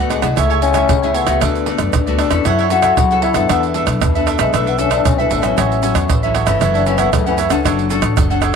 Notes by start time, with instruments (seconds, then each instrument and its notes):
Already playing: upright bass D2, nylon-string guitar A2
0.00 nylon-string guitar A3 B3 F#4, cavaquinho B4 F#5
0.10 trombone G#3, cavaquinho D4 B4 D5 F#5, pandeiro, tamborim, shaker
0.22 upright bass C2, nylon-string guitar A3 E4 G#4, cavaquinho B4 D5 F#5, pandeiro, tamborim, shaker, surdo
0.36 upright bass C#2, nylon-string guitar C#3, trombone A3, cavaquinho A4 C#5 E5 G#5, pandeiro, tamborim, shaker, surdo
0.50 cavaquinho A4 C#5 E5 G#5, pandeiro, shaker
0.61 trombone C#4, cavaquinho A4 C#5 E5 G#5, pandeiro
0.74 nylon-string guitar A3 E4 G#4, cavaquinho A4 C#5 E5 G#5, pandeiro, tamborim, shaker, surdo
0.89 upright bass C#3, nylon-string guitar C#3, pandeiro, tamborim, shaker, surdo
1.02 nylon-string guitar A3 E4 G#4, cavaquinho C#5 E5 G#5, pandeiro, shaker
1.14 trombone B3, cavaquinho A4 C#5 E5 G#5, pandeiro
1.26 upright bass C#2, nylon-string guitar A3 B3 F#4, cavaquinho C#5 E5 G#5, pandeiro, tamborim, shaker
1.41 upright bass D2, nylon-string guitar D3, trombone A3, cavaquinho D4 A4 B4 D5, pandeiro, tamborim, shaker, surdo
1.55 pandeiro, shaker
1.65 nylon-string guitar A3 B3 F#4, cavaquinho D4 A4 B4 D5, pandeiro
1.78 upright bass F#2, pandeiro, tamborim, shaker, surdo
1.93 upright bass D2, nylon-string guitar D3, pandeiro, tamborim, shaker, surdo
2.06 nylon-string guitar A3 B3 F#4, cavaquinho A4 B4 D5, pandeiro, shaker, surdo
2.18 cavaquinho D4 A4 B4 D5, trombone D4, pandeiro, tamborim
2.31 upright bass E2, nylon-string guitar C#4 E4 A4, cavaquinho A4 B4 D5, pandeiro, tamborim, shaker, surdo
2.45 upright bass F#2, nylon-string guitar F#3, cavaquinho E4 A4 C#5 F#5, trombone E4, pandeiro, tamborim, shaker, surdo
2.59 cavaquinho E4 A4 C#5 F#5, pandeiro, shaker
2.70 nylon-string guitar C#4 E4 A4, cavaquinho E4 A4 C#5 F#5, trombone F#4, pandeiro, shaker
2.82 cavaquinho E4 A4 C#5 F#5, pandeiro, tamborim, shaker, surdo
2.97 nylon-string guitar C#3, upright bass F#3, pandeiro, tamborim, shaker, surdo
3.11 nylon-string guitar C#4 E4 A4, cavaquinho A4 C#5 F#5, pandeiro, shaker
3.22 cavaquinho E4 A4 C#5 F#5, trombone E4, pandeiro
3.34 upright bass F#2, nylon-string guitar B3 D4 A4, cavaquinho A4 C#5 F#5, pandeiro, tamborim, shaker
3.49 upright bass E2, nylon-string guitar E3, trombone B3, cavaquinho D4 A4 B4 E5, pandeiro, tamborim, shaker, surdo
3.63 pandeiro, shaker
3.74 nylon-string guitar B3 D4 A4, cavaquinho D4 A4 B4 E5, pandeiro
3.87 upright bass B1, pandeiro, tamborim, shaker, surdo
4.01 upright bass E2, nylon-string guitar B2, pandeiro, tamborim, shaker, surdo
4.15 nylon-string guitar B3 D4 A4, cavaquinho A4 B4 E5, pandeiro, shaker, surdo
4.26 cavaquinho D4 A4 B4 E5, pandeiro, tamborim, shaker
4.39 upright bass B1, trombone G#3, nylon-string guitar B3 D4 A4, cavaquinho A4 B4 E5, pandeiro, tamborim, shaker, surdo
4.53 upright bass B1, nylon-string guitar E3 B3 D4 A4, trombone A3, cavaquinho D4 A4 B4 E5, pandeiro, tamborim, shaker, surdo
4.66 trombone B3, cavaquinho D4 A4 B4 E5, pandeiro, shaker
4.78 nylon-string guitar B3 D4 A4, trombone C#4, cavaquinho D4 A4 B4 E5, pandeiro, shaker, surdo
4.90 cavaquinho D4 A4 B4 E5, trombone D4, pandeiro, tamborim, shaker, surdo
5.05 upright bass B1, nylon-string guitar B2, trombone C#4, pandeiro, tamborim, shaker, surdo
5.18 trombone E3, nylon-string guitar B3 D4 A4, cavaquinho A4 B4 E5, pandeiro, shaker
5.30 upright bass A1, trombone A3, cavaquinho D4 A4 B4 E5, pandeiro, shaker
5.42 nylon-string guitar F#3 C#4 E4, trombone C#4, cavaquinho A4 B4 E5, pandeiro, tamborim, shaker
5.57 upright bass A1, nylon-string guitar A2, cavaquinho F#4 A4 C#5 E5, pandeiro, tamborim, shaker, surdo
5.72 pandeiro, shaker
5.82 nylon-string guitar F#3 C#4 E4, cavaquinho F#4 A4 C#5 E5, pandeiro, shaker
5.95 upright bass E2, pandeiro, tamborim, shaker, surdo
6.09 upright bass A1, nylon-string guitar E3, pandeiro, tamborim, shaker, surdo
6.23 nylon-string guitar F#3 C#4 E4, cavaquinho A4 C#5 E5, pandeiro, shaker, surdo
6.34 cavaquinho F#4 A4 C#5 E5, pandeiro, tamborim
6.46 upright bass G1, nylon-string guitar E3 A3 C#4, cavaquinho A4 C#5 E5, pandeiro, tamborim, shaker, surdo
6.60 upright bass F#1, nylon-string guitar F#2, cavaquinho E4 A4 C#5 F#5, pandeiro, tamborim, shaker, surdo
6.74 trombone D4, cavaquinho E4 A4 C#5 F#5, pandeiro, shaker
6.86 nylon-string guitar E3 A3 C#4, trombone C#4, cavaquinho E4 A4 C#5 F#5, pandeiro, shaker
6.98 trombone B3, cavaquinho E4 A4 C#5 F#5, pandeiro, tamborim, shaker, surdo
7.13 upright bass F#2, nylon-string guitar C#3, trombone A3, pandeiro, tamborim, shaker, surdo
7.26 nylon-string guitar E3 A3 C#4, trombone E3, cavaquinho A4 C#5 F#5, pandeiro, shaker
7.37 cavaquinho E4 A4 C#5 F#5, pandeiro, shaker
7.50 upright bass C#2, nylon-string guitar C#4 D4 A4, cavaquinho A4 C#5 F#5, pandeiro, tamborim, shaker
7.65 upright bass F#1, nylon-string guitar F#3, cavaquinho D4 A4 C#5 F#5, pandeiro, tamborim, shaker, surdo
7.79 pandeiro, shaker
7.89 nylon-string guitar C#4 D4 A4, cavaquinho D4 A4 C#5 F#5, pandeiro, shaker
8.02 upright bass A1, pandeiro, tamborim, shaker, surdo
8.17 upright bass F#1, nylon-string guitar F#3, pandeiro, tamborim, shaker, surdo
8.30 nylon-string guitar C#4 D4 A4, cavaquinho A4 C#5 F#5, pandeiro, shaker, surdo
8.42 cavaquinho D4 A4 C#5 F#5, pandeiro, tamborim, shaker